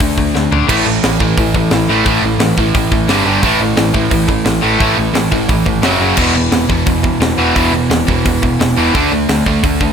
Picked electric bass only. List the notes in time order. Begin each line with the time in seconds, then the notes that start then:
0.00 D2
0.17 D2
0.34 D2
0.51 D2
0.68 A1
0.86 A1
1.05 A1
1.20 A1
1.37 A1
1.72 A1
1.90 A1
2.05 A1
2.23 A1
2.38 A1
2.57 A1
2.74 A1
2.92 A1
3.08 G1
3.26 G1
3.42 A1
3.60 A1
3.77 A1
3.94 A1
4.11 A1
4.45 A1
4.64 A1
4.80 A1
4.97 A1
5.14 A1
5.31 A1
5.49 A1
5.66 G#1
5.82 F#1
6.00 F#1
6.17 E1
6.34 E1
6.52 E1
6.69 E1
6.86 E1
7.20 E1
7.39 E1
7.56 E1
7.72 E1
7.90 E1
8.08 E1
8.25 E1
8.43 E1
8.60 E1
8.77 E1
8.95 D2
9.12 D2
9.29 D2
9.46 D2
9.63 D2